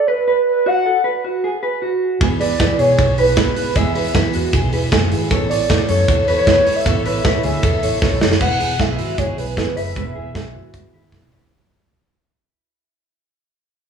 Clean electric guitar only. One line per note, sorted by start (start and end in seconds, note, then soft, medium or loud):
0.08 0.26 B4 medium
0.28 0.64 B4 medium
0.66 0.85 F#4 loud
0.86 1.04 A4 medium
1.04 1.24 B4 medium
1.24 1.44 F#4 medium
1.44 1.62 G#4 medium
1.63 1.82 B4 medium
1.82 2.18 F#4 medium
2.21 2.40 G#4 loud
2.40 2.59 B4 medium
2.60 2.79 B4 medium
2.79 3.16 G#4 medium
3.19 3.37 B4 medium
3.38 3.74 B4 medium
3.76 3.95 G#4 loud
3.96 4.14 B4 medium
4.15 4.34 B4 medium
4.35 4.54 F#4 medium
4.54 4.73 G#4 medium
4.73 4.92 B4 medium
4.92 5.29 G#4 medium
5.31 5.50 A4 loud
5.50 5.69 C#5 medium
5.70 5.89 C#5 medium
5.90 6.26 A4 medium
6.28 6.47 B4 medium
6.48 6.86 B4 medium
6.86 7.05 A4 loud
7.06 7.23 B4 medium
7.25 7.44 B4 medium
7.44 7.63 G#4 medium
7.63 7.82 A4 medium
7.83 8.01 C#5 medium
8.02 8.38 A4 medium
8.41 8.59 B4 medium
8.60 8.78 G#4 medium
8.79 8.99 G#4 medium
8.98 9.18 F#4 medium
9.18 9.55 G#4 medium
9.57 9.76 G#4 medium
9.77 9.95 B4 medium
9.97 10.15 B4 medium
10.15 10.33 G#4 medium
10.34 10.54 G#4 medium
10.54 10.91 F#4 medium
10.94 11.30 E4 medium
11.33 11.52 E4 medium